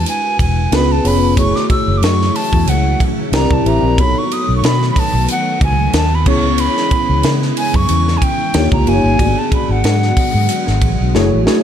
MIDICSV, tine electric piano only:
0, 0, Header, 1, 2, 480
1, 0, Start_track
1, 0, Tempo, 652174
1, 1011, Time_signature, 4, 2, 24, 8
1, 8560, End_track
2, 0, Start_track
2, 0, Title_t, "Tine electric piano"
2, 0, Program_c, 0, 4
2, 0, Control_c, 0, 64, 127
2, 0, Note_on_c, 0, 56, 66
2, 0, Note_on_c, 0, 62, 63
2, 0, Note_on_c, 0, 64, 62
2, 0, Note_on_c, 0, 66, 60
2, 0, Note_on_c, 0, 71, 78
2, 528, Note_on_c, 0, 59, 87
2, 528, Note_on_c, 0, 61, 71
2, 529, Note_on_c, 0, 65, 73
2, 532, Note_on_c, 0, 68, 81
2, 536, Note_off_c, 0, 71, 0
2, 536, Note_on_c, 0, 71, 94
2, 542, Control_c, 0, 64, 0
2, 543, Note_off_c, 0, 56, 0
2, 547, Note_off_c, 0, 62, 0
2, 547, Note_off_c, 0, 64, 0
2, 547, Note_off_c, 0, 66, 0
2, 669, Control_c, 0, 64, 127
2, 747, Note_off_c, 0, 59, 0
2, 747, Note_off_c, 0, 61, 0
2, 748, Note_off_c, 0, 65, 0
2, 750, Note_off_c, 0, 68, 0
2, 751, Note_off_c, 0, 71, 0
2, 767, Note_on_c, 0, 59, 78
2, 768, Note_on_c, 0, 61, 63
2, 769, Note_on_c, 0, 65, 65
2, 772, Note_on_c, 0, 73, 77
2, 773, Note_on_c, 0, 68, 66
2, 987, Note_off_c, 0, 59, 0
2, 988, Note_off_c, 0, 61, 0
2, 988, Note_off_c, 0, 65, 0
2, 989, Note_off_c, 0, 73, 0
2, 990, Note_off_c, 0, 68, 0
2, 1011, Note_on_c, 0, 64, 55
2, 1012, Note_on_c, 0, 57, 66
2, 1017, Note_on_c, 0, 66, 66
2, 1017, Note_on_c, 0, 68, 59
2, 1020, Note_on_c, 0, 73, 71
2, 1021, Control_c, 0, 64, 0
2, 1159, Control_c, 0, 64, 127
2, 1882, Note_off_c, 0, 57, 0
2, 1882, Note_off_c, 0, 64, 0
2, 1885, Note_off_c, 0, 66, 0
2, 1885, Note_off_c, 0, 68, 0
2, 1886, Note_off_c, 0, 73, 0
2, 2456, Note_on_c, 0, 60, 88
2, 2459, Note_on_c, 0, 64, 81
2, 2460, Control_c, 0, 64, 0
2, 2460, Note_on_c, 0, 67, 80
2, 2464, Note_on_c, 0, 70, 80
2, 2466, Note_on_c, 0, 74, 96
2, 2601, Control_c, 0, 64, 127
2, 2671, Note_off_c, 0, 60, 0
2, 2673, Note_off_c, 0, 64, 0
2, 2674, Note_off_c, 0, 67, 0
2, 2676, Note_off_c, 0, 70, 0
2, 2677, Note_off_c, 0, 74, 0
2, 2692, Note_on_c, 0, 60, 74
2, 2695, Note_on_c, 0, 67, 69
2, 2696, Note_on_c, 0, 64, 72
2, 2699, Note_on_c, 0, 70, 72
2, 2699, Note_on_c, 0, 76, 78
2, 2909, Note_off_c, 0, 60, 0
2, 2911, Note_off_c, 0, 64, 0
2, 2911, Note_off_c, 0, 67, 0
2, 2913, Note_off_c, 0, 70, 0
2, 2913, Note_off_c, 0, 76, 0
2, 2932, Note_on_c, 0, 59, 72
2, 2934, Note_on_c, 0, 63, 64
2, 2937, Note_on_c, 0, 66, 61
2, 2942, Control_c, 0, 64, 0
2, 2943, Note_on_c, 0, 69, 63
2, 2944, Note_on_c, 0, 73, 78
2, 3049, Control_c, 0, 64, 127
2, 3802, Note_off_c, 0, 59, 0
2, 3803, Note_off_c, 0, 63, 0
2, 3805, Note_off_c, 0, 66, 0
2, 3807, Note_off_c, 0, 69, 0
2, 3808, Note_off_c, 0, 73, 0
2, 4613, Note_on_c, 0, 59, 87
2, 4614, Note_on_c, 0, 61, 75
2, 4615, Note_on_c, 0, 64, 74
2, 4619, Note_on_c, 0, 68, 69
2, 4619, Note_on_c, 0, 73, 89
2, 4621, Control_c, 0, 64, 0
2, 4756, Control_c, 0, 64, 127
2, 5482, Note_off_c, 0, 59, 0
2, 5483, Note_off_c, 0, 61, 0
2, 5483, Note_off_c, 0, 64, 0
2, 5485, Note_off_c, 0, 68, 0
2, 5485, Note_off_c, 0, 73, 0
2, 6294, Note_on_c, 0, 58, 88
2, 6294, Note_on_c, 0, 63, 81
2, 6298, Note_on_c, 0, 65, 79
2, 6299, Control_c, 0, 64, 0
2, 6301, Note_on_c, 0, 67, 78
2, 6302, Note_on_c, 0, 73, 94
2, 6434, Control_c, 0, 64, 127
2, 6510, Note_off_c, 0, 58, 0
2, 6510, Note_off_c, 0, 63, 0
2, 6512, Note_off_c, 0, 65, 0
2, 6513, Note_off_c, 0, 67, 0
2, 6514, Note_off_c, 0, 73, 0
2, 6530, Note_on_c, 0, 58, 74
2, 6534, Note_on_c, 0, 63, 72
2, 6534, Note_on_c, 0, 67, 68
2, 6536, Note_on_c, 0, 65, 71
2, 6541, Note_on_c, 0, 73, 75
2, 6747, Note_off_c, 0, 58, 0
2, 6749, Note_off_c, 0, 67, 0
2, 6750, Note_off_c, 0, 63, 0
2, 6751, Note_off_c, 0, 65, 0
2, 6753, Note_off_c, 0, 73, 0
2, 6765, Note_on_c, 0, 66, 70
2, 6766, Note_on_c, 0, 62, 63
2, 6767, Note_on_c, 0, 57, 57
2, 6770, Note_on_c, 0, 74, 72
2, 6772, Note_on_c, 0, 68, 68
2, 6779, Control_c, 0, 64, 0
2, 6814, Note_on_c, 0, 59, 71
2, 6820, Note_off_c, 0, 57, 0
2, 6912, Control_c, 0, 64, 127
2, 7637, Note_off_c, 0, 66, 0
2, 7638, Note_off_c, 0, 62, 0
2, 7640, Note_off_c, 0, 74, 0
2, 7641, Note_off_c, 0, 68, 0
2, 7662, Note_off_c, 0, 59, 0
2, 8204, Note_on_c, 0, 57, 99
2, 8206, Note_on_c, 0, 64, 97
2, 8208, Note_on_c, 0, 66, 100
2, 8213, Note_on_c, 0, 68, 93
2, 8216, Note_on_c, 0, 73, 118
2, 8220, Control_c, 0, 64, 0
2, 8344, Control_c, 0, 64, 127
2, 8424, Note_off_c, 0, 57, 0
2, 8425, Note_off_c, 0, 64, 0
2, 8426, Note_off_c, 0, 66, 0
2, 8428, Note_off_c, 0, 68, 0
2, 8430, Note_off_c, 0, 73, 0
2, 8436, Note_on_c, 0, 57, 88
2, 8437, Note_on_c, 0, 64, 74
2, 8439, Note_on_c, 0, 66, 73
2, 8441, Note_on_c, 0, 68, 84
2, 8444, Note_on_c, 0, 73, 100
2, 8560, Note_off_c, 0, 57, 0
2, 8560, Note_off_c, 0, 64, 0
2, 8560, Note_off_c, 0, 66, 0
2, 8560, Note_off_c, 0, 68, 0
2, 8560, Note_off_c, 0, 73, 0
2, 8560, End_track
0, 0, End_of_file